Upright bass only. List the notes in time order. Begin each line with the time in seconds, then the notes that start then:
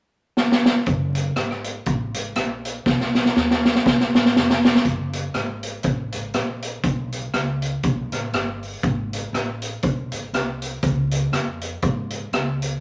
0.87 F#1
1.37 G#1
1.87 A1
2.15 G#1
2.36 A#1
2.86 B1
3.36 D#2
3.86 B1
4.15 A1
4.35 F1
4.85 F#1
5.35 G#1
5.85 A1
6.14 G#1
6.34 A#1
6.84 B1
7.34 C#2
7.84 B1
8.12 A1
8.33 G1
8.83 G#1
9.33 A1
9.84 B1
10.12 G#1
10.33 C2
10.83 C#2
11.32 F2
11.82 G#2
12.33 C#2